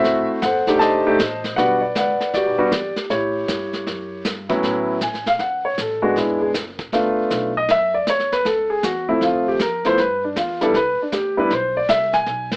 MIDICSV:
0, 0, Header, 1, 5, 480
1, 0, Start_track
1, 0, Tempo, 382409
1, 46, Time_signature, 4, 2, 24, 8
1, 15773, End_track
2, 0, Start_track
2, 0, Title_t, "Grand piano"
2, 0, Program_c, 0, 0
2, 0, Note_on_c, 0, 57, 70
2, 0, Note_on_c, 0, 60, 60
2, 0, Note_on_c, 0, 64, 57
2, 0, Note_on_c, 0, 66, 77
2, 0, Note_on_c, 0, 69, 64
2, 0, Note_on_c, 0, 72, 62
2, 0, Note_on_c, 0, 76, 90
2, 327, Note_off_c, 0, 76, 0
2, 499, Note_off_c, 0, 60, 0
2, 500, Note_off_c, 0, 57, 0
2, 500, Note_off_c, 0, 64, 0
2, 503, Note_off_c, 0, 66, 0
2, 531, Note_on_c, 0, 78, 86
2, 536, Note_off_c, 0, 69, 0
2, 538, Note_off_c, 0, 72, 0
2, 555, Note_on_c, 0, 69, 59
2, 557, Note_on_c, 0, 72, 55
2, 850, Note_on_c, 0, 57, 67
2, 858, Note_on_c, 0, 62, 60
2, 859, Note_on_c, 0, 63, 62
2, 865, Note_on_c, 0, 67, 75
2, 989, Note_off_c, 0, 69, 0
2, 990, Note_off_c, 0, 72, 0
2, 994, Note_on_c, 0, 81, 95
2, 1015, Note_on_c, 0, 72, 68
2, 1015, Note_on_c, 0, 75, 71
2, 1024, Note_off_c, 0, 78, 0
2, 1293, Note_off_c, 0, 57, 0
2, 1297, Note_off_c, 0, 62, 0
2, 1298, Note_off_c, 0, 63, 0
2, 1301, Note_off_c, 0, 67, 0
2, 1338, Note_on_c, 0, 63, 72
2, 1339, Note_on_c, 0, 57, 84
2, 1339, Note_on_c, 0, 62, 66
2, 1341, Note_on_c, 0, 67, 86
2, 1481, Note_off_c, 0, 57, 0
2, 1481, Note_off_c, 0, 62, 0
2, 1481, Note_off_c, 0, 63, 0
2, 1482, Note_off_c, 0, 67, 0
2, 1742, Note_off_c, 0, 81, 0
2, 1921, Note_off_c, 0, 72, 0
2, 1921, Note_off_c, 0, 75, 0
2, 1962, Note_on_c, 0, 78, 95
2, 1976, Note_on_c, 0, 55, 58
2, 1980, Note_on_c, 0, 59, 53
2, 1984, Note_on_c, 0, 62, 55
2, 1985, Note_on_c, 0, 66, 63
2, 1991, Note_on_c, 0, 74, 67
2, 1995, Note_on_c, 0, 71, 60
2, 2252, Note_off_c, 0, 55, 0
2, 2254, Note_off_c, 0, 59, 0
2, 2256, Note_off_c, 0, 62, 0
2, 2256, Note_off_c, 0, 66, 0
2, 2262, Note_off_c, 0, 74, 0
2, 2281, Note_on_c, 0, 74, 64
2, 2286, Note_off_c, 0, 78, 0
2, 2437, Note_off_c, 0, 74, 0
2, 2472, Note_on_c, 0, 78, 78
2, 2484, Note_off_c, 0, 71, 0
2, 2496, Note_on_c, 0, 74, 57
2, 2503, Note_on_c, 0, 71, 57
2, 2923, Note_off_c, 0, 74, 0
2, 2942, Note_on_c, 0, 74, 81
2, 2954, Note_off_c, 0, 78, 0
2, 2962, Note_on_c, 0, 66, 55
2, 2967, Note_on_c, 0, 67, 59
2, 3229, Note_off_c, 0, 66, 0
2, 3240, Note_on_c, 0, 59, 73
2, 3245, Note_on_c, 0, 55, 77
2, 3245, Note_on_c, 0, 62, 65
2, 3248, Note_on_c, 0, 66, 81
2, 3385, Note_off_c, 0, 71, 0
2, 3392, Note_off_c, 0, 59, 0
2, 3394, Note_off_c, 0, 55, 0
2, 3394, Note_off_c, 0, 62, 0
2, 3396, Note_off_c, 0, 66, 0
2, 3676, Note_off_c, 0, 74, 0
2, 3857, Note_off_c, 0, 67, 0
2, 3894, Note_on_c, 0, 73, 74
2, 3919, Note_on_c, 0, 67, 51
2, 3924, Note_on_c, 0, 64, 54
2, 5281, Note_off_c, 0, 73, 0
2, 5293, Note_off_c, 0, 67, 0
2, 5296, Note_off_c, 0, 64, 0
2, 5639, Note_on_c, 0, 45, 71
2, 5642, Note_on_c, 0, 54, 71
2, 5647, Note_on_c, 0, 59, 66
2, 5648, Note_on_c, 0, 61, 64
2, 5649, Note_on_c, 0, 64, 76
2, 6254, Note_off_c, 0, 45, 0
2, 6256, Note_off_c, 0, 54, 0
2, 6258, Note_off_c, 0, 59, 0
2, 6258, Note_off_c, 0, 61, 0
2, 6259, Note_off_c, 0, 64, 0
2, 6314, Note_on_c, 0, 80, 66
2, 6603, Note_off_c, 0, 80, 0
2, 6621, Note_on_c, 0, 77, 76
2, 6774, Note_off_c, 0, 77, 0
2, 6776, Note_on_c, 0, 78, 75
2, 7074, Note_off_c, 0, 78, 0
2, 7090, Note_on_c, 0, 73, 66
2, 7248, Note_off_c, 0, 73, 0
2, 7290, Note_on_c, 0, 69, 61
2, 7558, Note_on_c, 0, 56, 73
2, 7562, Note_on_c, 0, 59, 61
2, 7563, Note_on_c, 0, 66, 79
2, 7564, Note_on_c, 0, 62, 58
2, 7571, Note_off_c, 0, 69, 0
2, 7725, Note_off_c, 0, 66, 0
2, 7760, Note_on_c, 0, 64, 62
2, 8046, Note_off_c, 0, 64, 0
2, 8052, Note_on_c, 0, 68, 73
2, 8149, Note_off_c, 0, 68, 0
2, 8173, Note_off_c, 0, 56, 0
2, 8176, Note_off_c, 0, 59, 0
2, 8177, Note_off_c, 0, 62, 0
2, 8698, Note_on_c, 0, 57, 69
2, 8700, Note_on_c, 0, 65, 74
2, 8702, Note_on_c, 0, 59, 57
2, 8702, Note_on_c, 0, 62, 54
2, 9422, Note_off_c, 0, 57, 0
2, 9422, Note_off_c, 0, 65, 0
2, 9423, Note_off_c, 0, 59, 0
2, 9423, Note_off_c, 0, 62, 0
2, 9505, Note_on_c, 0, 75, 88
2, 9656, Note_off_c, 0, 75, 0
2, 9677, Note_on_c, 0, 76, 89
2, 9964, Note_off_c, 0, 76, 0
2, 9971, Note_on_c, 0, 74, 76
2, 10128, Note_off_c, 0, 74, 0
2, 10162, Note_on_c, 0, 73, 80
2, 10447, Note_off_c, 0, 73, 0
2, 10453, Note_on_c, 0, 71, 85
2, 10609, Note_off_c, 0, 71, 0
2, 10617, Note_on_c, 0, 69, 73
2, 10914, Note_off_c, 0, 69, 0
2, 10920, Note_on_c, 0, 68, 74
2, 11083, Note_off_c, 0, 68, 0
2, 11097, Note_on_c, 0, 66, 66
2, 11393, Note_off_c, 0, 66, 0
2, 11403, Note_on_c, 0, 53, 59
2, 11405, Note_on_c, 0, 57, 56
2, 11406, Note_on_c, 0, 64, 82
2, 11413, Note_on_c, 0, 60, 59
2, 11566, Note_off_c, 0, 64, 0
2, 11586, Note_on_c, 0, 65, 65
2, 11878, Note_off_c, 0, 65, 0
2, 11901, Note_on_c, 0, 67, 67
2, 12015, Note_off_c, 0, 53, 0
2, 12016, Note_off_c, 0, 57, 0
2, 12020, Note_off_c, 0, 60, 0
2, 12053, Note_off_c, 0, 67, 0
2, 12076, Note_on_c, 0, 70, 69
2, 12363, Note_off_c, 0, 70, 0
2, 12364, Note_on_c, 0, 53, 63
2, 12368, Note_on_c, 0, 57, 58
2, 12369, Note_on_c, 0, 59, 58
2, 12374, Note_on_c, 0, 64, 70
2, 12379, Note_on_c, 0, 72, 95
2, 12512, Note_off_c, 0, 53, 0
2, 12514, Note_off_c, 0, 57, 0
2, 12515, Note_off_c, 0, 59, 0
2, 12517, Note_off_c, 0, 64, 0
2, 12532, Note_off_c, 0, 72, 0
2, 12547, Note_on_c, 0, 71, 78
2, 12838, Note_off_c, 0, 71, 0
2, 12858, Note_on_c, 0, 62, 55
2, 13011, Note_off_c, 0, 62, 0
2, 13020, Note_on_c, 0, 65, 66
2, 13315, Note_off_c, 0, 65, 0
2, 13319, Note_on_c, 0, 55, 69
2, 13324, Note_on_c, 0, 59, 61
2, 13327, Note_on_c, 0, 62, 53
2, 13330, Note_on_c, 0, 64, 72
2, 13347, Note_on_c, 0, 69, 82
2, 13469, Note_off_c, 0, 55, 0
2, 13472, Note_off_c, 0, 59, 0
2, 13473, Note_off_c, 0, 62, 0
2, 13475, Note_off_c, 0, 64, 0
2, 13496, Note_off_c, 0, 69, 0
2, 13510, Note_on_c, 0, 71, 85
2, 13799, Note_off_c, 0, 71, 0
2, 13836, Note_on_c, 0, 62, 51
2, 13972, Note_on_c, 0, 67, 61
2, 13980, Note_off_c, 0, 62, 0
2, 14270, Note_off_c, 0, 67, 0
2, 14274, Note_on_c, 0, 55, 64
2, 14275, Note_on_c, 0, 59, 60
2, 14279, Note_on_c, 0, 62, 61
2, 14282, Note_on_c, 0, 64, 70
2, 14305, Note_on_c, 0, 71, 81
2, 14427, Note_off_c, 0, 55, 0
2, 14427, Note_off_c, 0, 59, 0
2, 14429, Note_off_c, 0, 62, 0
2, 14431, Note_off_c, 0, 64, 0
2, 14455, Note_off_c, 0, 71, 0
2, 14472, Note_on_c, 0, 72, 78
2, 14760, Note_off_c, 0, 72, 0
2, 14772, Note_on_c, 0, 74, 77
2, 14927, Note_off_c, 0, 74, 0
2, 14932, Note_on_c, 0, 76, 81
2, 15230, Note_off_c, 0, 76, 0
2, 15235, Note_on_c, 0, 80, 99
2, 15681, Note_off_c, 0, 80, 0
2, 15773, End_track
3, 0, Start_track
3, 0, Title_t, "Upright bass"
3, 0, Program_c, 1, 32
3, 525, Note_on_c, 1, 31, 85
3, 992, Note_off_c, 1, 31, 0
3, 1012, Note_on_c, 1, 29, 74
3, 1476, Note_off_c, 1, 29, 0
3, 1490, Note_on_c, 1, 33, 83
3, 1954, Note_off_c, 1, 33, 0
3, 1973, Note_on_c, 1, 35, 76
3, 2436, Note_off_c, 1, 35, 0
3, 2452, Note_on_c, 1, 37, 92
3, 2740, Note_off_c, 1, 37, 0
3, 2936, Note_on_c, 1, 38, 72
3, 3084, Note_off_c, 1, 38, 0
3, 3084, Note_on_c, 1, 35, 53
3, 3230, Note_off_c, 1, 35, 0
3, 3238, Note_on_c, 1, 31, 65
3, 3391, Note_off_c, 1, 31, 0
3, 3408, Note_on_c, 1, 40, 92
3, 3697, Note_off_c, 1, 40, 0
3, 3892, Note_on_c, 1, 45, 81
3, 4356, Note_off_c, 1, 45, 0
3, 4372, Note_on_c, 1, 43, 80
3, 4835, Note_off_c, 1, 43, 0
3, 4855, Note_on_c, 1, 42, 77
3, 5317, Note_off_c, 1, 42, 0
3, 5330, Note_on_c, 1, 43, 88
3, 5795, Note_off_c, 1, 43, 0
3, 5809, Note_on_c, 1, 45, 68
3, 6274, Note_off_c, 1, 45, 0
3, 6294, Note_on_c, 1, 33, 78
3, 6757, Note_off_c, 1, 33, 0
3, 6769, Note_on_c, 1, 37, 76
3, 7234, Note_off_c, 1, 37, 0
3, 7249, Note_on_c, 1, 33, 81
3, 7714, Note_off_c, 1, 33, 0
3, 7734, Note_on_c, 1, 32, 78
3, 8196, Note_off_c, 1, 32, 0
3, 8213, Note_on_c, 1, 30, 78
3, 8676, Note_off_c, 1, 30, 0
3, 8694, Note_on_c, 1, 31, 72
3, 9156, Note_off_c, 1, 31, 0
3, 9170, Note_on_c, 1, 35, 88
3, 9634, Note_off_c, 1, 35, 0
3, 9648, Note_on_c, 1, 42, 75
3, 10113, Note_off_c, 1, 42, 0
3, 10128, Note_on_c, 1, 40, 75
3, 10593, Note_off_c, 1, 40, 0
3, 10604, Note_on_c, 1, 37, 75
3, 11071, Note_off_c, 1, 37, 0
3, 11087, Note_on_c, 1, 40, 88
3, 11552, Note_off_c, 1, 40, 0
3, 11559, Note_on_c, 1, 38, 80
3, 12028, Note_off_c, 1, 38, 0
3, 12047, Note_on_c, 1, 41, 76
3, 12512, Note_off_c, 1, 41, 0
3, 12524, Note_on_c, 1, 43, 73
3, 12990, Note_off_c, 1, 43, 0
3, 13005, Note_on_c, 1, 40, 92
3, 13470, Note_off_c, 1, 40, 0
3, 13483, Note_on_c, 1, 36, 85
3, 13773, Note_off_c, 1, 36, 0
3, 13960, Note_on_c, 1, 38, 86
3, 14428, Note_off_c, 1, 38, 0
3, 14439, Note_on_c, 1, 35, 77
3, 14907, Note_off_c, 1, 35, 0
3, 14919, Note_on_c, 1, 36, 93
3, 15387, Note_off_c, 1, 36, 0
3, 15396, Note_on_c, 1, 35, 81
3, 15773, Note_off_c, 1, 35, 0
3, 15773, End_track
4, 0, Start_track
4, 0, Title_t, "Muted upright bass strokes"
4, 356, Note_on_c, 9, 29, 36
4, 481, Note_off_c, 9, 29, 0
4, 2766, Note_on_c, 9, 29, 41
4, 2891, Note_off_c, 9, 29, 0
4, 3706, Note_on_c, 9, 29, 37
4, 3832, Note_off_c, 9, 29, 0
4, 13784, Note_on_c, 9, 29, 39
4, 13909, Note_off_c, 9, 29, 0
4, 15773, End_track
5, 0, Start_track
5, 0, Title_t, "Drums"
5, 50, Note_on_c, 9, 36, 23
5, 52, Note_on_c, 9, 25, 48
5, 52, Note_on_c, 9, 38, 47
5, 176, Note_off_c, 9, 36, 0
5, 177, Note_off_c, 9, 38, 0
5, 529, Note_on_c, 9, 36, 23
5, 529, Note_on_c, 9, 38, 59
5, 529, Note_on_c, 9, 44, 58
5, 654, Note_off_c, 9, 36, 0
5, 654, Note_off_c, 9, 38, 0
5, 654, Note_off_c, 9, 44, 0
5, 841, Note_on_c, 9, 38, 54
5, 967, Note_off_c, 9, 38, 0
5, 1011, Note_on_c, 9, 36, 25
5, 1013, Note_off_c, 9, 25, 0
5, 1013, Note_on_c, 9, 25, 44
5, 1013, Note_on_c, 9, 38, 40
5, 1137, Note_off_c, 9, 36, 0
5, 1138, Note_off_c, 9, 38, 0
5, 1493, Note_on_c, 9, 36, 23
5, 1499, Note_on_c, 9, 38, 63
5, 1499, Note_on_c, 9, 44, 53
5, 1618, Note_off_c, 9, 36, 0
5, 1624, Note_off_c, 9, 38, 0
5, 1624, Note_off_c, 9, 44, 0
5, 1808, Note_on_c, 9, 38, 42
5, 1934, Note_off_c, 9, 38, 0
5, 1973, Note_on_c, 9, 36, 22
5, 1979, Note_off_c, 9, 25, 0
5, 1979, Note_on_c, 9, 25, 45
5, 1979, Note_on_c, 9, 38, 42
5, 2099, Note_off_c, 9, 36, 0
5, 2105, Note_off_c, 9, 38, 0
5, 2452, Note_on_c, 9, 36, 26
5, 2456, Note_on_c, 9, 38, 66
5, 2456, Note_on_c, 9, 44, 51
5, 2577, Note_off_c, 9, 36, 0
5, 2581, Note_off_c, 9, 38, 0
5, 2581, Note_off_c, 9, 44, 0
5, 2767, Note_on_c, 9, 38, 40
5, 2893, Note_off_c, 9, 38, 0
5, 2932, Note_off_c, 9, 25, 0
5, 2932, Note_on_c, 9, 25, 48
5, 2932, Note_on_c, 9, 36, 19
5, 2932, Note_on_c, 9, 38, 43
5, 3058, Note_off_c, 9, 36, 0
5, 3058, Note_off_c, 9, 38, 0
5, 3411, Note_on_c, 9, 36, 20
5, 3412, Note_on_c, 9, 38, 65
5, 3412, Note_on_c, 9, 44, 54
5, 3537, Note_off_c, 9, 36, 0
5, 3538, Note_off_c, 9, 38, 0
5, 3538, Note_off_c, 9, 44, 0
5, 3719, Note_on_c, 9, 38, 44
5, 3844, Note_off_c, 9, 38, 0
5, 3891, Note_on_c, 9, 36, 24
5, 3893, Note_off_c, 9, 25, 0
5, 3893, Note_on_c, 9, 25, 52
5, 3893, Note_on_c, 9, 38, 46
5, 4017, Note_off_c, 9, 36, 0
5, 4018, Note_off_c, 9, 38, 0
5, 4372, Note_on_c, 9, 36, 26
5, 4372, Note_on_c, 9, 38, 60
5, 4372, Note_on_c, 9, 44, 52
5, 4498, Note_off_c, 9, 36, 0
5, 4498, Note_off_c, 9, 38, 0
5, 4498, Note_off_c, 9, 44, 0
5, 4685, Note_on_c, 9, 38, 40
5, 4811, Note_off_c, 9, 38, 0
5, 4853, Note_on_c, 9, 36, 20
5, 4857, Note_off_c, 9, 25, 0
5, 4857, Note_on_c, 9, 25, 50
5, 4857, Note_on_c, 9, 38, 43
5, 4979, Note_off_c, 9, 36, 0
5, 4982, Note_off_c, 9, 38, 0
5, 5332, Note_on_c, 9, 36, 22
5, 5332, Note_on_c, 9, 38, 62
5, 5332, Note_on_c, 9, 44, 69
5, 5457, Note_off_c, 9, 36, 0
5, 5458, Note_off_c, 9, 38, 0
5, 5458, Note_off_c, 9, 44, 0
5, 5644, Note_on_c, 9, 36, 61
5, 5647, Note_on_c, 9, 38, 42
5, 5769, Note_off_c, 9, 36, 0
5, 5772, Note_off_c, 9, 38, 0
5, 5812, Note_on_c, 9, 36, 17
5, 5813, Note_off_c, 9, 25, 0
5, 5813, Note_on_c, 9, 25, 48
5, 5813, Note_on_c, 9, 38, 38
5, 5938, Note_off_c, 9, 36, 0
5, 5938, Note_off_c, 9, 38, 0
5, 6289, Note_on_c, 9, 38, 59
5, 6289, Note_on_c, 9, 44, 62
5, 6291, Note_on_c, 9, 36, 19
5, 6414, Note_off_c, 9, 38, 0
5, 6414, Note_off_c, 9, 44, 0
5, 6417, Note_off_c, 9, 36, 0
5, 6452, Note_on_c, 9, 38, 27
5, 6577, Note_off_c, 9, 38, 0
5, 6605, Note_on_c, 9, 38, 39
5, 6615, Note_off_c, 9, 38, 0
5, 6615, Note_on_c, 9, 38, 41
5, 6740, Note_off_c, 9, 38, 0
5, 6767, Note_off_c, 9, 25, 0
5, 6767, Note_on_c, 9, 25, 45
5, 6767, Note_on_c, 9, 38, 41
5, 6771, Note_on_c, 9, 36, 18
5, 6893, Note_off_c, 9, 38, 0
5, 6896, Note_off_c, 9, 36, 0
5, 7252, Note_on_c, 9, 36, 23
5, 7253, Note_on_c, 9, 38, 55
5, 7253, Note_on_c, 9, 44, 55
5, 7377, Note_off_c, 9, 36, 0
5, 7378, Note_off_c, 9, 38, 0
5, 7378, Note_off_c, 9, 44, 0
5, 7733, Note_on_c, 9, 36, 26
5, 7738, Note_off_c, 9, 25, 0
5, 7738, Note_on_c, 9, 25, 41
5, 7738, Note_on_c, 9, 38, 39
5, 7859, Note_off_c, 9, 36, 0
5, 7863, Note_off_c, 9, 38, 0
5, 8212, Note_on_c, 9, 36, 26
5, 8214, Note_on_c, 9, 38, 61
5, 8214, Note_on_c, 9, 44, 60
5, 8338, Note_off_c, 9, 36, 0
5, 8339, Note_off_c, 9, 38, 0
5, 8339, Note_off_c, 9, 44, 0
5, 8522, Note_on_c, 9, 36, 54
5, 8525, Note_on_c, 9, 38, 41
5, 8647, Note_off_c, 9, 36, 0
5, 8650, Note_off_c, 9, 38, 0
5, 8690, Note_on_c, 9, 36, 19
5, 8693, Note_off_c, 9, 25, 0
5, 8693, Note_on_c, 9, 25, 40
5, 8693, Note_on_c, 9, 38, 39
5, 8816, Note_off_c, 9, 36, 0
5, 8819, Note_off_c, 9, 38, 0
5, 9169, Note_on_c, 9, 38, 62
5, 9169, Note_on_c, 9, 44, 51
5, 9170, Note_on_c, 9, 36, 18
5, 9295, Note_off_c, 9, 36, 0
5, 9295, Note_off_c, 9, 38, 0
5, 9295, Note_off_c, 9, 44, 0
5, 9648, Note_off_c, 9, 25, 0
5, 9648, Note_on_c, 9, 25, 43
5, 9648, Note_on_c, 9, 36, 18
5, 9648, Note_on_c, 9, 38, 43
5, 9774, Note_off_c, 9, 36, 0
5, 9774, Note_off_c, 9, 38, 0
5, 10127, Note_on_c, 9, 36, 25
5, 10128, Note_on_c, 9, 38, 55
5, 10128, Note_on_c, 9, 44, 47
5, 10252, Note_off_c, 9, 36, 0
5, 10254, Note_off_c, 9, 38, 0
5, 10254, Note_off_c, 9, 44, 0
5, 10285, Note_on_c, 9, 38, 28
5, 10410, Note_off_c, 9, 38, 0
5, 10447, Note_on_c, 9, 38, 45
5, 10572, Note_off_c, 9, 38, 0
5, 10605, Note_on_c, 9, 36, 18
5, 10607, Note_off_c, 9, 25, 0
5, 10607, Note_on_c, 9, 25, 45
5, 10607, Note_on_c, 9, 38, 41
5, 10731, Note_off_c, 9, 36, 0
5, 10732, Note_off_c, 9, 38, 0
5, 11084, Note_on_c, 9, 36, 26
5, 11084, Note_on_c, 9, 38, 62
5, 11084, Note_on_c, 9, 44, 58
5, 11209, Note_off_c, 9, 36, 0
5, 11210, Note_off_c, 9, 38, 0
5, 11210, Note_off_c, 9, 44, 0
5, 11562, Note_off_c, 9, 25, 0
5, 11562, Note_on_c, 9, 25, 44
5, 11562, Note_on_c, 9, 36, 17
5, 11562, Note_on_c, 9, 38, 40
5, 11687, Note_off_c, 9, 36, 0
5, 11688, Note_off_c, 9, 38, 0
5, 12043, Note_on_c, 9, 36, 27
5, 12044, Note_on_c, 9, 38, 59
5, 12044, Note_on_c, 9, 44, 54
5, 12168, Note_off_c, 9, 36, 0
5, 12170, Note_off_c, 9, 38, 0
5, 12170, Note_off_c, 9, 44, 0
5, 12359, Note_on_c, 9, 38, 39
5, 12485, Note_off_c, 9, 38, 0
5, 12524, Note_on_c, 9, 36, 23
5, 12525, Note_off_c, 9, 25, 0
5, 12525, Note_on_c, 9, 25, 51
5, 12525, Note_on_c, 9, 38, 41
5, 12649, Note_off_c, 9, 36, 0
5, 12651, Note_off_c, 9, 38, 0
5, 13005, Note_on_c, 9, 36, 20
5, 13008, Note_on_c, 9, 38, 64
5, 13008, Note_on_c, 9, 44, 62
5, 13130, Note_off_c, 9, 36, 0
5, 13134, Note_off_c, 9, 38, 0
5, 13134, Note_off_c, 9, 44, 0
5, 13317, Note_on_c, 9, 38, 43
5, 13443, Note_off_c, 9, 38, 0
5, 13483, Note_on_c, 9, 36, 23
5, 13487, Note_off_c, 9, 25, 0
5, 13487, Note_on_c, 9, 25, 48
5, 13487, Note_on_c, 9, 38, 46
5, 13608, Note_off_c, 9, 36, 0
5, 13613, Note_off_c, 9, 38, 0
5, 13961, Note_on_c, 9, 38, 60
5, 13961, Note_on_c, 9, 44, 52
5, 13962, Note_on_c, 9, 36, 21
5, 14086, Note_off_c, 9, 38, 0
5, 14086, Note_off_c, 9, 44, 0
5, 14087, Note_off_c, 9, 36, 0
5, 14440, Note_on_c, 9, 36, 18
5, 14442, Note_off_c, 9, 25, 0
5, 14442, Note_on_c, 9, 25, 48
5, 14442, Note_on_c, 9, 38, 43
5, 14566, Note_off_c, 9, 36, 0
5, 14568, Note_off_c, 9, 38, 0
5, 14920, Note_on_c, 9, 36, 22
5, 14922, Note_on_c, 9, 38, 71
5, 14922, Note_on_c, 9, 44, 62
5, 15045, Note_off_c, 9, 36, 0
5, 15048, Note_off_c, 9, 38, 0
5, 15048, Note_off_c, 9, 44, 0
5, 15228, Note_on_c, 9, 38, 43
5, 15353, Note_off_c, 9, 38, 0
5, 15393, Note_off_c, 9, 25, 0
5, 15393, Note_on_c, 9, 25, 46
5, 15393, Note_on_c, 9, 38, 42
5, 15396, Note_on_c, 9, 36, 24
5, 15518, Note_off_c, 9, 38, 0
5, 15522, Note_off_c, 9, 36, 0
5, 15709, Note_on_c, 9, 38, 57
5, 15773, Note_off_c, 9, 25, 0
5, 15773, Note_off_c, 9, 38, 0
5, 15773, End_track
0, 0, End_of_file